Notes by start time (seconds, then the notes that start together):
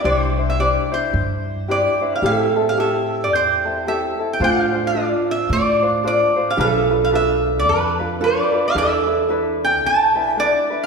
0.04 C2 D4 E4 G4 C5
0.37 D4 E4 C5
0.50 E5
0.59 D4 E4 G4 C5 D5
0.92 D4 E4 C5
1.14 G2
1.68 D4 E4 G4 C5 D5
2.01 D4 E4 C5
2.15 F5
2.22 A2 C4 E4 G4 A4 F5
2.37 E5
2.56 C4 E4 A4
2.67 G4 F5
2.77 C4 E4 G4 A4 E5
3.24 D5
3.32 E2 C5
3.65 C4 E4 A4
3.86 C4 E4 G4 A4 E5
4.19 C4 E4 A4
4.33 G5
4.40 A2 D4 F4 A4 C5 F5
4.73 D4 F4 C5
4.87 D5
4.94 D4 F4 A4 C5
5.31 E5
5.49 A2 D5
5.82 D4 F4 C5
6.03 D4 F4 A4 C5
6.07 D5
6.36 D4 F4 C5
6.50 F5
6.57 B1 D4 F4 A4 B4 F5
6.72 E5
6.91 D4 F4 B4
7.04 F5
7.11 D4 F4 A4 B4
7.15 E5
7.59 D5
7.67 F2 B4
7.99 D4 F4 B4
8.20 D4 F4 A4 B4 D5
8.53 D4 F4 B4
8.68 F5
8.74 E2 D4 E4 A4 B4 E5
9.06 D4 E4 B4
9.29 D4 E4 A4 B4
9.64 G5
9.82 B1
9.86 A5
10.15 D4 E4 B4
10.29 G5
10.37 D4 E4 A4 B4 D5
10.70 D4 E4 B4
10.83 F5